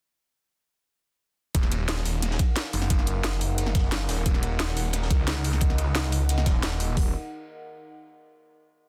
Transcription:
1.55 detuned saw bass D#1, analog synth pad D#4 A#4 F5 F#5, kick, closed hi-hat, ride
1.63 snare, ride
1.72 closed hi-hat, ride
1.88 snare, closed hi-hat, ride
1.97 snare
2.05 detuned saw bass D#1, open hi-hat, ride
2.22 snare, closed hi-hat, ride
2.31 snare
2.39 kick, closed hi-hat, ride
2.56 snare, closed hi-hat, ride
2.73 detuned saw bass F#1, open hi-hat, ride
2.82 snare, ride
2.90 kick, closed hi-hat, ride
2.99 snare
3.07 closed hi-hat, ride
3.23 snare, closed hi-hat, ride
3.41 open hi-hat, ride
3.58 closed hi-hat, ride
3.66 snare
3.75 kick, snare, closed hi-hat, ride
3.92 snare, closed hi-hat, ride
4.01 ride
4.09 detuned saw bass D#1, snare, open hi-hat, ride
4.17 ride
4.26 detuned saw bass D#1, analog synth pad D#5, kick, closed hi-hat, ride
4.34 snare, ride
4.43 closed hi-hat, ride
4.60 snare, closed hi-hat, ride
4.68 snare
4.77 detuned saw bass D#1, open hi-hat, ride
4.93 snare, closed hi-hat, ride
5.02 snare
5.11 detuned saw bass C#2, kick, closed hi-hat, ride
5.27 snare, closed hi-hat, ride
5.44 open hi-hat, ride
5.53 snare, ride
5.61 kick, closed hi-hat, ride
5.70 snare
5.78 closed hi-hat, ride
5.95 snare, closed hi-hat, ride
6.12 open hi-hat, ride
6.29 closed hi-hat, ride
6.38 snare
6.46 detuned saw bass D#1, kick, snare, closed hi-hat, ride
6.63 snare, closed hi-hat, ride
6.72 ride
6.80 open hi-hat, ride
6.97 detuned saw bass D#1, kick, open hi-hat

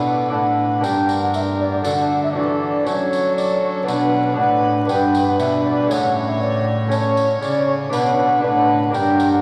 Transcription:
Already playing: lute B2 D4 B4, cello B2, bassoon D4, violin B4, flute F#5
0.30 lute A2 D4 B4, cello A2, bassoon D4, violin B4, flute F#5
0.80 lute G2 A#3 D4 A#4, cello G2, flute G5
0.84 bassoon D4, violin A#4, tambourine
1.09 tambourine
1.23 flute F#5
1.34 flute E5, tambourine
1.60 flute D5
1.82 cello D3, lute D3 A3 D4 F#4, bassoon D4, violin A4, flute F#5, tambourine
2.24 flute E5
2.32 lute A3 D4 F#4, flute D5
2.36 lute E3, cello E3, bassoon D4, violin A4
2.83 cello F#3, lute F#3 A3 C#4 F#4, flute C#5, tambourine
2.88 bassoon C#4, violin A4
3.13 tambourine
3.36 flute D5, tambourine
3.63 flute C#5
3.83 lute B3 D4 F#4
3.87 lute B2, cello B2, bassoon D4, violin B4, flute F#5, tambourine
4.34 lute A2 B3 D4 F#4
4.38 cello A2, bassoon D4, violin B4, flute F#5
4.85 lute G2 B3 D4 B4
4.89 cello G2, bassoon D4, violin B4, flute G5, tambourine
5.15 tambourine
5.29 flute F#5
5.39 lute B2, cello B2, flute E5, tambourine
5.64 flute D5
5.87 cello A2, lute A2 C#3 A3 E5, bassoon C#4, violin C#5, flute F#5, tambourine
6.28 flute E5
6.41 flute D5
6.87 lute A3 C#4 C#5, flute C#5, tambourine
6.92 bassoon C#4, violin C#5
7.17 tambourine
7.41 lute C#3, cello C#3, flute D5, tambourine
7.67 flute C#5
7.90 lute B2 D4 B4, cello B2, bassoon D4, violin B4, flute F#5, tambourine
8.40 lute A2 D4 B4, bassoon D4, violin B4, flute F#5
8.44 cello A2
8.90 lute G2 A#3 D4 A#4, violin A#4
8.94 cello G2, bassoon D4, flute G5, tambourine
9.20 tambourine
9.32 flute F#5

